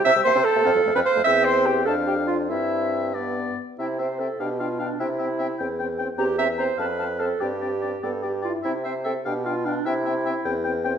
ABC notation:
X:1
M:6/8
L:1/16
Q:3/8=99
K:C
V:1 name="Flute"
e'2 c'2 a4- a b c'2 | e'2 c'2 g2 a2 g2 f2 | e6 z6 | g2 g2 g2 g2 g2 g2 |
g2 g2 g2 g2 g2 g2 | _b2 b2 b2 a2 a2 a2 | g2 g2 g2 g2 g2 g2 | g2 g2 g2 g2 g2 g2 |
g2 g2 g2 g2 g2 g2 |]
V:2 name="Oboe"
g6 f6 | g6 f6 | e6 d4 z2 | e2 e2 e2 f2 f2 f2 |
e2 e2 e2 g2 g2 g2 | g2 g2 g2 f2 f2 f2 | d2 d2 d2 d2 d2 d2 | e2 e2 e2 f2 f2 f2 |
e2 e2 e2 g2 g2 g2 |]
V:3 name="Clarinet"
e2 c2 A4- A B c2 | e2 c2 G2 A2 G2 F2 | E6 z6 | E2 c2 A2 G2 F2 D2 |
E8- E2 z2 | G2 e2 c2 B4 A2 | G6 A2 G2 F2 | E2 c2 A2 G2 F2 D2 |
E8- E2 z2 |]
V:4 name="French horn"
C G, _B, C z B, C F, A, C z A, | C6 D6 | C6 B,4 z2 | C2 C2 C2 D2 D2 D2 |
C2 C2 C2 C2 C2 C2 | C2 C2 C2 C2 C2 C2 | C2 C2 C2 B,2 G2 E2 | C2 C2 C2 D2 D2 D2 |
C2 C2 C2 C2 C2 C2 |]
V:5 name="Bassoon" clef=bass
C, C, C, C, z C, F,, F,, F,, F,, z F,, | E,,6 F,,6 | G,,8- G,,2 z2 | C,4- C, z B,,4- B,, z |
C,4- C, z E,,4- E,, z | E,,4- E,, z F,,4- F,, z | G,,4- G,, z G,,4- G,, z | C,4- C, z B,,4- B,, z |
C,4- C, z E,,4- E,, z |]